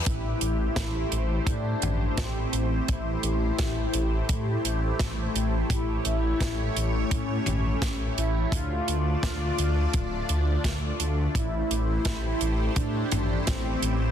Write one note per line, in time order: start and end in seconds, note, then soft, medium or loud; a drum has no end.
0.06 0.34 A1 loud
0.06 11.31 A3 medium
0.06 8.49 E4 medium
0.06 1.51 E4 loud
0.06 8.49 G4 medium
0.06 5.66 C5 medium
0.06 kick loud
0.06 closed hi-hat loud
0.41 0.69 A1 medium
0.41 closed hi-hat medium
0.76 1.04 A1 loud
0.76 kick loud
0.76 snare loud
0.76 closed hi-hat loud
1.12 1.40 A1 loud
1.12 closed hi-hat medium
1.47 1.75 A2 medium
1.47 2.20 D4 loud
1.47 kick loud
1.47 closed hi-hat loud
1.82 2.10 A1 medium
1.82 closed hi-hat medium
1.82 mid tom medium
2.18 2.45 A1 medium
2.18 2.90 C4 loud
2.18 kick loud
2.18 snare loud
2.18 closed hi-hat loud
2.53 2.81 A1 loud
2.53 closed hi-hat medium
2.88 3.16 A1 loud
2.88 5.31 E4 loud
2.88 kick loud
2.88 closed hi-hat medium
3.23 3.51 A1 medium
3.23 closed hi-hat medium
3.59 3.87 A1 loud
3.59 kick loud
3.59 snare loud
3.59 closed hi-hat medium
3.94 4.22 A1 loud
3.94 closed hi-hat medium
4.29 4.57 A2 loud
4.29 kick loud
4.29 closed hi-hat loud
4.64 4.92 A1 medium
4.64 closed hi-hat medium
4.99 5.28 A1 medium
4.99 kick loud
4.99 snare loud
4.99 closed hi-hat medium
5.35 5.63 A1 loud
5.35 closed hi-hat medium
5.70 5.98 A1 loud
5.70 7.16 E4 loud
5.70 8.50 C#5 medium
5.70 kick loud
5.70 closed hi-hat loud
6.05 6.34 A1 medium
6.05 closed hi-hat medium
6.40 6.69 A1 loud
6.40 kick loud
6.40 snare loud
6.40 closed hi-hat medium
6.76 7.04 A1 loud
6.76 closed hi-hat medium
7.11 7.39 A2 medium
7.11 8.21 C#4 loud
7.11 kick loud
7.11 closed hi-hat loud
7.46 7.75 A1 medium
7.46 closed hi-hat medium
7.46 mid tom medium
7.82 8.10 A1 medium
7.82 kick loud
7.82 snare loud
7.82 closed hi-hat loud
8.17 8.45 A1 loud
8.17 8.54 E4 loud
8.17 closed hi-hat medium
8.52 8.80 D2 loud
8.52 11.32 D4 medium
8.52 9.22 F4 loud
8.52 11.32 F4 medium
8.52 11.32 D5 medium
8.52 kick loud
8.52 closed hi-hat loud
8.88 9.16 D2 medium
8.88 closed hi-hat medium
9.23 9.51 D2 loud
9.23 10.61 F4 loud
9.23 kick loud
9.23 snare loud
9.23 closed hi-hat medium
9.58 9.86 D2 loud
9.58 closed hi-hat medium
9.93 10.22 D1 medium
9.93 kick loud
9.93 closed hi-hat medium
10.29 10.57 D2 medium
10.29 closed hi-hat medium
10.64 kick loud
10.64 snare loud
10.64 closed hi-hat loud
11.00 11.28 D2 loud
11.00 closed hi-hat medium
11.35 11.63 A1 loud
11.35 14.11 A3 medium
11.35 12.72 E4 loud
11.35 14.11 E4 medium
11.35 14.11 G4 medium
11.35 14.11 C5 medium
11.35 kick loud
11.35 closed hi-hat loud
11.71 11.98 A1 medium
11.71 closed hi-hat medium
12.05 12.33 A1 loud
12.05 kick loud
12.05 snare loud
12.05 closed hi-hat medium
12.41 12.69 A1 loud
12.41 closed hi-hat medium
12.76 13.04 A2 medium
12.76 13.49 D4 medium
12.76 kick loud
12.76 closed hi-hat medium
13.12 13.40 A1 medium
13.12 closed hi-hat medium
13.12 mid tom medium
13.47 13.75 A1 medium
13.47 14.11 C4 medium
13.47 kick loud
13.47 snare loud
13.47 closed hi-hat medium
13.82 14.10 A1 loud
13.82 closed hi-hat medium